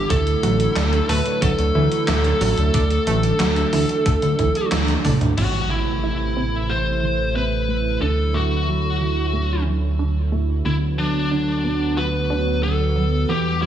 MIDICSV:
0, 0, Header, 1, 7, 480
1, 0, Start_track
1, 0, Tempo, 659341
1, 75, Time_signature, 4, 2, 24, 8
1, 9944, End_track
2, 0, Start_track
2, 0, Title_t, "Lead electric guitar"
2, 0, Program_c, 0, 29
2, 0, Note_on_c, 0, 67, 97
2, 74, Note_off_c, 0, 67, 0
2, 77, Note_on_c, 0, 69, 101
2, 794, Note_off_c, 0, 69, 0
2, 797, Note_on_c, 0, 71, 96
2, 1034, Note_off_c, 0, 71, 0
2, 1036, Note_on_c, 0, 69, 87
2, 3407, Note_off_c, 0, 69, 0
2, 3914, Note_on_c, 0, 66, 89
2, 4152, Note_off_c, 0, 66, 0
2, 4155, Note_on_c, 0, 64, 89
2, 4874, Note_on_c, 0, 72, 103
2, 4896, Note_off_c, 0, 64, 0
2, 5351, Note_off_c, 0, 72, 0
2, 5354, Note_on_c, 0, 71, 94
2, 5832, Note_off_c, 0, 71, 0
2, 5835, Note_on_c, 0, 69, 97
2, 6074, Note_on_c, 0, 66, 83
2, 6082, Note_off_c, 0, 69, 0
2, 7005, Note_off_c, 0, 66, 0
2, 7757, Note_on_c, 0, 64, 96
2, 7822, Note_off_c, 0, 64, 0
2, 7997, Note_on_c, 0, 62, 92
2, 8716, Note_on_c, 0, 71, 106
2, 8738, Note_off_c, 0, 62, 0
2, 9193, Note_off_c, 0, 71, 0
2, 9196, Note_on_c, 0, 69, 94
2, 9676, Note_on_c, 0, 67, 96
2, 9690, Note_off_c, 0, 69, 0
2, 9898, Note_off_c, 0, 67, 0
2, 9915, Note_on_c, 0, 64, 80
2, 9944, Note_off_c, 0, 64, 0
2, 9944, End_track
3, 0, Start_track
3, 0, Title_t, "Synth arpeggio sound"
3, 0, Program_c, 1, 84
3, 74, Note_on_c, 1, 57, 83
3, 283, Note_off_c, 1, 57, 0
3, 314, Note_on_c, 1, 54, 76
3, 543, Note_off_c, 1, 54, 0
3, 554, Note_on_c, 1, 62, 107
3, 680, Note_off_c, 1, 62, 0
3, 794, Note_on_c, 1, 57, 105
3, 1004, Note_off_c, 1, 57, 0
3, 1034, Note_on_c, 1, 54, 86
3, 1243, Note_off_c, 1, 54, 0
3, 1275, Note_on_c, 1, 52, 78
3, 1484, Note_off_c, 1, 52, 0
3, 1515, Note_on_c, 1, 57, 80
3, 1724, Note_off_c, 1, 57, 0
3, 1755, Note_on_c, 1, 54, 82
3, 1983, Note_off_c, 1, 54, 0
3, 1996, Note_on_c, 1, 62, 102
3, 2121, Note_off_c, 1, 62, 0
3, 2236, Note_on_c, 1, 57, 102
3, 2444, Note_off_c, 1, 57, 0
3, 2476, Note_on_c, 1, 54, 79
3, 2684, Note_off_c, 1, 54, 0
3, 2715, Note_on_c, 1, 52, 79
3, 2924, Note_off_c, 1, 52, 0
3, 2955, Note_on_c, 1, 57, 87
3, 3164, Note_off_c, 1, 57, 0
3, 3195, Note_on_c, 1, 52, 79
3, 3320, Note_off_c, 1, 52, 0
3, 3435, Note_on_c, 1, 52, 78
3, 3644, Note_off_c, 1, 52, 0
3, 3675, Note_on_c, 1, 62, 77
3, 3903, Note_off_c, 1, 62, 0
3, 3914, Note_on_c, 1, 60, 81
3, 4123, Note_off_c, 1, 60, 0
3, 4154, Note_on_c, 1, 57, 74
3, 4382, Note_off_c, 1, 57, 0
3, 4394, Note_on_c, 1, 64, 101
3, 4520, Note_off_c, 1, 64, 0
3, 4634, Note_on_c, 1, 60, 100
3, 4843, Note_off_c, 1, 60, 0
3, 4873, Note_on_c, 1, 57, 83
3, 5083, Note_off_c, 1, 57, 0
3, 5114, Note_on_c, 1, 52, 74
3, 5323, Note_off_c, 1, 52, 0
3, 5354, Note_on_c, 1, 60, 75
3, 5563, Note_off_c, 1, 60, 0
3, 5594, Note_on_c, 1, 57, 74
3, 5822, Note_off_c, 1, 57, 0
3, 5834, Note_on_c, 1, 62, 100
3, 5960, Note_off_c, 1, 62, 0
3, 6073, Note_on_c, 1, 57, 100
3, 6283, Note_off_c, 1, 57, 0
3, 6313, Note_on_c, 1, 54, 75
3, 6523, Note_off_c, 1, 54, 0
3, 6553, Note_on_c, 1, 52, 74
3, 6763, Note_off_c, 1, 52, 0
3, 6793, Note_on_c, 1, 57, 84
3, 7003, Note_off_c, 1, 57, 0
3, 7035, Note_on_c, 1, 54, 75
3, 7263, Note_off_c, 1, 54, 0
3, 7274, Note_on_c, 1, 62, 100
3, 7400, Note_off_c, 1, 62, 0
3, 7514, Note_on_c, 1, 57, 100
3, 7723, Note_off_c, 1, 57, 0
3, 7755, Note_on_c, 1, 59, 80
3, 7964, Note_off_c, 1, 59, 0
3, 7995, Note_on_c, 1, 54, 74
3, 8204, Note_off_c, 1, 54, 0
3, 8235, Note_on_c, 1, 62, 76
3, 8444, Note_off_c, 1, 62, 0
3, 8475, Note_on_c, 1, 59, 74
3, 8703, Note_off_c, 1, 59, 0
3, 8715, Note_on_c, 1, 66, 100
3, 8840, Note_off_c, 1, 66, 0
3, 8955, Note_on_c, 1, 62, 97
3, 9164, Note_off_c, 1, 62, 0
3, 9195, Note_on_c, 1, 59, 73
3, 9404, Note_off_c, 1, 59, 0
3, 9434, Note_on_c, 1, 54, 74
3, 9643, Note_off_c, 1, 54, 0
3, 9675, Note_on_c, 1, 59, 81
3, 9884, Note_off_c, 1, 59, 0
3, 9914, Note_on_c, 1, 55, 77
3, 9944, Note_off_c, 1, 55, 0
3, 9944, End_track
4, 0, Start_track
4, 0, Title_t, "Analog synth pad"
4, 0, Program_c, 2, 89
4, 0, Note_on_c, 2, 50, 85
4, 0, Note_on_c, 2, 64, 92
4, 73, Note_on_c, 2, 57, 75
4, 74, Note_on_c, 2, 54, 76
4, 1965, Note_off_c, 2, 64, 0
4, 1994, Note_on_c, 2, 62, 90
4, 3885, Note_off_c, 2, 50, 0
4, 3885, Note_off_c, 2, 54, 0
4, 3885, Note_off_c, 2, 57, 0
4, 3895, Note_off_c, 2, 62, 0
4, 3915, Note_on_c, 2, 52, 72
4, 3916, Note_on_c, 2, 57, 73
4, 3916, Note_on_c, 2, 64, 86
4, 3917, Note_on_c, 2, 48, 75
4, 5816, Note_off_c, 2, 52, 0
4, 5817, Note_off_c, 2, 48, 0
4, 5834, Note_on_c, 2, 54, 70
4, 5836, Note_on_c, 2, 50, 78
4, 7726, Note_off_c, 2, 57, 0
4, 7726, Note_off_c, 2, 64, 0
4, 7735, Note_off_c, 2, 54, 0
4, 7755, Note_on_c, 2, 54, 74
4, 7755, Note_on_c, 2, 59, 70
4, 7755, Note_on_c, 2, 66, 88
4, 9646, Note_off_c, 2, 50, 0
4, 9656, Note_off_c, 2, 54, 0
4, 9656, Note_off_c, 2, 66, 0
4, 9675, Note_on_c, 2, 52, 78
4, 9676, Note_on_c, 2, 55, 72
4, 9676, Note_on_c, 2, 67, 86
4, 9944, Note_off_c, 2, 52, 0
4, 9944, Note_off_c, 2, 55, 0
4, 9944, Note_off_c, 2, 59, 0
4, 9944, Note_off_c, 2, 67, 0
4, 9944, End_track
5, 0, Start_track
5, 0, Title_t, "Analog synth bass"
5, 0, Program_c, 3, 38
5, 74, Note_on_c, 3, 38, 99
5, 258, Note_off_c, 3, 38, 0
5, 315, Note_on_c, 3, 33, 102
5, 498, Note_off_c, 3, 33, 0
5, 555, Note_on_c, 3, 38, 84
5, 738, Note_off_c, 3, 38, 0
5, 795, Note_on_c, 3, 38, 98
5, 886, Note_off_c, 3, 38, 0
5, 1035, Note_on_c, 3, 38, 92
5, 1126, Note_off_c, 3, 38, 0
5, 1155, Note_on_c, 3, 38, 82
5, 1247, Note_off_c, 3, 38, 0
5, 1275, Note_on_c, 3, 38, 93
5, 1366, Note_off_c, 3, 38, 0
5, 1516, Note_on_c, 3, 38, 78
5, 1698, Note_off_c, 3, 38, 0
5, 1755, Note_on_c, 3, 33, 96
5, 1847, Note_off_c, 3, 33, 0
5, 1875, Note_on_c, 3, 38, 101
5, 1967, Note_off_c, 3, 38, 0
5, 1995, Note_on_c, 3, 38, 104
5, 2178, Note_off_c, 3, 38, 0
5, 2235, Note_on_c, 3, 33, 106
5, 2418, Note_off_c, 3, 33, 0
5, 2475, Note_on_c, 3, 38, 85
5, 2658, Note_off_c, 3, 38, 0
5, 2715, Note_on_c, 3, 38, 97
5, 2806, Note_off_c, 3, 38, 0
5, 2955, Note_on_c, 3, 38, 94
5, 3046, Note_off_c, 3, 38, 0
5, 3075, Note_on_c, 3, 38, 83
5, 3167, Note_off_c, 3, 38, 0
5, 3195, Note_on_c, 3, 38, 91
5, 3286, Note_off_c, 3, 38, 0
5, 3435, Note_on_c, 3, 38, 79
5, 3618, Note_off_c, 3, 38, 0
5, 3674, Note_on_c, 3, 33, 94
5, 3766, Note_off_c, 3, 33, 0
5, 3794, Note_on_c, 3, 38, 98
5, 3886, Note_off_c, 3, 38, 0
5, 3914, Note_on_c, 3, 33, 84
5, 5810, Note_off_c, 3, 33, 0
5, 5835, Note_on_c, 3, 38, 86
5, 7731, Note_off_c, 3, 38, 0
5, 7755, Note_on_c, 3, 38, 90
5, 9651, Note_off_c, 3, 38, 0
5, 9674, Note_on_c, 3, 40, 88
5, 9944, Note_off_c, 3, 40, 0
5, 9944, End_track
6, 0, Start_track
6, 0, Title_t, "Impact"
6, 0, Program_c, 4, 103
6, 3914, Note_on_c, 4, 60, 68
6, 5835, Note_off_c, 4, 60, 0
6, 9944, End_track
7, 0, Start_track
7, 0, Title_t, "Drums"
7, 74, Note_on_c, 9, 36, 114
7, 75, Note_on_c, 9, 42, 89
7, 147, Note_off_c, 9, 36, 0
7, 148, Note_off_c, 9, 42, 0
7, 195, Note_on_c, 9, 42, 39
7, 268, Note_off_c, 9, 42, 0
7, 315, Note_on_c, 9, 42, 63
7, 388, Note_off_c, 9, 42, 0
7, 435, Note_on_c, 9, 42, 41
7, 508, Note_off_c, 9, 42, 0
7, 555, Note_on_c, 9, 38, 114
7, 555, Note_on_c, 9, 39, 100
7, 555, Note_on_c, 9, 42, 92
7, 628, Note_off_c, 9, 38, 0
7, 628, Note_off_c, 9, 39, 0
7, 628, Note_off_c, 9, 42, 0
7, 675, Note_on_c, 9, 42, 39
7, 748, Note_off_c, 9, 42, 0
7, 795, Note_on_c, 9, 46, 82
7, 868, Note_off_c, 9, 46, 0
7, 915, Note_on_c, 9, 42, 41
7, 987, Note_off_c, 9, 42, 0
7, 1034, Note_on_c, 9, 36, 118
7, 1034, Note_on_c, 9, 42, 92
7, 1107, Note_off_c, 9, 36, 0
7, 1107, Note_off_c, 9, 42, 0
7, 1154, Note_on_c, 9, 42, 40
7, 1227, Note_off_c, 9, 42, 0
7, 1395, Note_on_c, 9, 42, 40
7, 1468, Note_off_c, 9, 42, 0
7, 1514, Note_on_c, 9, 38, 118
7, 1514, Note_on_c, 9, 39, 102
7, 1514, Note_on_c, 9, 42, 92
7, 1587, Note_off_c, 9, 38, 0
7, 1587, Note_off_c, 9, 39, 0
7, 1587, Note_off_c, 9, 42, 0
7, 1634, Note_on_c, 9, 42, 39
7, 1707, Note_off_c, 9, 42, 0
7, 1754, Note_on_c, 9, 46, 81
7, 1827, Note_off_c, 9, 46, 0
7, 1875, Note_on_c, 9, 42, 41
7, 1947, Note_off_c, 9, 42, 0
7, 1995, Note_on_c, 9, 36, 116
7, 1995, Note_on_c, 9, 42, 95
7, 2067, Note_off_c, 9, 36, 0
7, 2067, Note_off_c, 9, 42, 0
7, 2115, Note_on_c, 9, 42, 41
7, 2187, Note_off_c, 9, 42, 0
7, 2234, Note_on_c, 9, 42, 66
7, 2307, Note_off_c, 9, 42, 0
7, 2354, Note_on_c, 9, 42, 41
7, 2427, Note_off_c, 9, 42, 0
7, 2474, Note_on_c, 9, 38, 118
7, 2474, Note_on_c, 9, 39, 102
7, 2474, Note_on_c, 9, 42, 98
7, 2547, Note_off_c, 9, 38, 0
7, 2547, Note_off_c, 9, 39, 0
7, 2547, Note_off_c, 9, 42, 0
7, 2594, Note_on_c, 9, 38, 35
7, 2594, Note_on_c, 9, 42, 41
7, 2667, Note_off_c, 9, 38, 0
7, 2667, Note_off_c, 9, 42, 0
7, 2714, Note_on_c, 9, 46, 83
7, 2787, Note_off_c, 9, 46, 0
7, 2834, Note_on_c, 9, 42, 42
7, 2907, Note_off_c, 9, 42, 0
7, 2954, Note_on_c, 9, 42, 95
7, 2955, Note_on_c, 9, 36, 120
7, 3027, Note_off_c, 9, 42, 0
7, 3028, Note_off_c, 9, 36, 0
7, 3074, Note_on_c, 9, 42, 40
7, 3147, Note_off_c, 9, 42, 0
7, 3195, Note_on_c, 9, 36, 60
7, 3195, Note_on_c, 9, 42, 39
7, 3267, Note_off_c, 9, 36, 0
7, 3267, Note_off_c, 9, 42, 0
7, 3315, Note_on_c, 9, 42, 41
7, 3387, Note_off_c, 9, 42, 0
7, 3434, Note_on_c, 9, 38, 115
7, 3434, Note_on_c, 9, 39, 97
7, 3434, Note_on_c, 9, 42, 93
7, 3434, Note_on_c, 9, 48, 63
7, 3507, Note_off_c, 9, 38, 0
7, 3507, Note_off_c, 9, 39, 0
7, 3507, Note_off_c, 9, 42, 0
7, 3507, Note_off_c, 9, 48, 0
7, 3554, Note_on_c, 9, 42, 40
7, 3554, Note_on_c, 9, 48, 63
7, 3627, Note_off_c, 9, 42, 0
7, 3627, Note_off_c, 9, 48, 0
7, 3674, Note_on_c, 9, 46, 80
7, 3674, Note_on_c, 9, 47, 86
7, 3675, Note_on_c, 9, 36, 61
7, 3747, Note_off_c, 9, 36, 0
7, 3747, Note_off_c, 9, 46, 0
7, 3747, Note_off_c, 9, 47, 0
7, 3794, Note_on_c, 9, 42, 41
7, 3794, Note_on_c, 9, 45, 86
7, 3867, Note_off_c, 9, 42, 0
7, 3867, Note_off_c, 9, 45, 0
7, 3914, Note_on_c, 9, 49, 80
7, 3987, Note_off_c, 9, 49, 0
7, 9944, End_track
0, 0, End_of_file